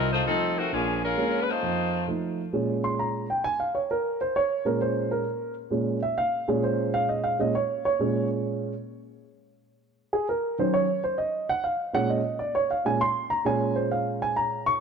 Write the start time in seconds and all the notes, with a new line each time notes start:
Already playing: C2 F3 C4 D#4 A#4
0.12 A3 D#4 F4 C5
0.26 F3 A3 C4 D#4 A4
0.58 D#3 A3 C4 F#4
0.72 A#1 F3 A#3 C#4 G#4
1.04 G#3 C#4 F4 A#4
1.17 G#3 A#3 C#4
1.41 B4
1.49 A3 D#4 F4 C5
1.63 F2
2.08 F3 A3 D#4
2.53 A#2 G#3 C#4
2.84 C6
2.99 A#5
3.30 G5
3.44 G#5
3.60 F5
3.75 C#5
3.91 A#4
4.21 C5
4.36 C#5
4.65 A#2 G#3 C#4 A#4
4.81 C5
5.11 A#4
5.71 A#2 G#3 C#4
6.03 E5
6.18 F5
6.48 A#2 G#3 C#4 G#4
6.64 C5
6.94 F5
7.09 D#5
7.24 F5
7.39 A#2 G#3 C#4 D#5
7.55 C#5
7.85 C#5
8.00 A#2 G#3 C#4
10.13 G#4
10.29 A#4
10.58 D#3 F#3 C#4 C5
10.74 C#5
11.04 C5
11.18 D#5
11.49 F#5
11.64 F5
11.94 A#2 G#3 C#4 F#5
12.09 D#5
12.39 D5
12.55 C#5
12.71 F5
12.85 A#2 G#3 C#4 G#5
13.01 C6
13.30 A#5
13.45 A#2 G#3 C#4 G#5
13.76 C5
13.91 F5
14.22 G#5
14.36 A#5
14.66 C#6